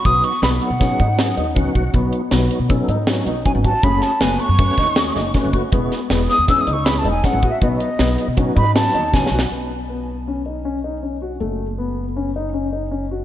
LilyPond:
<<
  \new Staff \with { instrumentName = "Flute" } { \time 5/4 \key b \mixolydian \tempo 4 = 159 dis'''8 cis'''8 b''8 fis''2~ fis''8 r4 | r1 gis''8 a''8 | b''8 a''8 gis''8 cis'''2~ cis'''8 r4 | r4. dis'''8 \tuplet 3/2 { e'''8 dis'''8 cis'''8 b''8 a''8 gis''8 fis''4 e''8 } |
\tuplet 3/2 { dis''8 dis''4~ } dis''4 r8 b''8 a''4 gis''4 | r1 r4 | r1 r4 | }
  \new Staff \with { instrumentName = "Tonewheel organ" } { \time 5/4 \key b \mixolydian << { r1 fis''4 | r1 r4 | r1 r4 | r1 r4 |
r1 r4 | r1 r4 | r1 r4 | } \\ { <fis b dis' fis'>8. r16 <fis b dis' a'>8. r16 <fis b dis' gis'>8. r16 <fis b dis' gis'>8. r16 <fis b dis' fis'>8. r16 | <fis b dis' fis'>8. r16 <fis b dis' fis'>8. r16 <fis b dis' a'>8. r16 <fis b dis' fis'>8. r16 <fis b dis' fis'>8. r16 | <a cis' fis' gis'>8. r16 <a cis' fis' b'>8. r16 <a cis' fis' b'>8. r16 <a cis' fis' gis'>8. r16 <a cis' fis' b'>8. r16 | <gis b e' gis'>8. r16 <gis b e' gis'>8. r16 <gis b e' gis'>8. r16 <gis b e' gis'>8. r16 <gis b e' gis'>8. r16 |
<fis b dis' fis'>8. r16 <fis b dis' gis'>8. r16 <fis b dis' fis'>8. r16 <fis b dis' fis'>8. r16 <fis b dis' fis'>8. r16 | r1 r4 | r1 r4 | } >> }
  \new Staff \with { instrumentName = "Grand piano" } { \time 5/4 \key b \mixolydian b4 b4 cis'8 dis'8 cis'8 dis'8 cis'8 fis'8 | b4 b4 cis'8 dis'8 cis'8 dis'8 cis'8 fis'8 | cis'4 b4 cis'8 dis'8 cis'8 dis'8 cis'8 fis'8 | b4 b4 cis'8 dis'8 cis'8 dis'8 cis'8 fis'8 |
b4 b4 cis'8 dis'8 cis'8 dis'8 cis'8 fis'8 | b4 b4 cis'8 dis'8 cis'8 dis'8 cis'8 fis'8 | a4 b4 cis'8 dis'8 cis'8 dis'8 cis'8 fis'8 | }
  \new Staff \with { instrumentName = "Upright bass" } { \clef bass \time 5/4 \key b \mixolydian b,,8 r8 b,,8 r16 b,8. gis,4 dis,8 cis,8 b,,8 | b,,8 r8 b,,8 r16 b,8. gis,4 b,,8 r16 gis,,8 r16 | fis,,8 r8 fis,,8 r16 fis,8. dis,4 fis,,8 r16 fis,,8 r16 | e,,8 r8 e,,8 r16 e,8. cis,4 e,,8 r16 a,,8 r16 |
b,,8 r8 b,,8 r16 b,8. gis,4 dis,8 cis,8 b,,8 | b,,1~ b,,4 | fis,,1~ fis,,4 | }
  \new DrumStaff \with { instrumentName = "Drums" } \drummode { \time 5/4 <hh bd>8 hh8 <hh sn>8 hh8 <hh bd sn>8 <hh bd>8 <hh sn>8 hh8 <hh bd>8 <hh bd>8 | <hh bd>8 hh8 <hh sn>8 hh8 <hh bd>8 hh8 <hh sn>8 hh8 <hh bd>8 <hh bd>8 | <hh bd>8 <hh sn>8 <hh sn>8 hh8 <hh bd>8 <hh bd>8 <hh sn>8 <hh sn>8 <hh bd sn>8 <hh bd>8 | <hh bd>8 <hh sn>8 <hh sn>8 <hh sn>8 <hh bd sn>8 hh8 <hh sn>8 hh8 <hh bd sn>8 <hh bd>8 |
<hh bd>8 hh8 <hh sn>8 hh8 <hh bd>8 <hh bd>8 <hh sn>8 hh8 \tuplet 3/2 { <bd sn>8 sn8 sn8 } | r4 r4 r4 r4 r4 | r4 r4 r4 r4 r4 | }
>>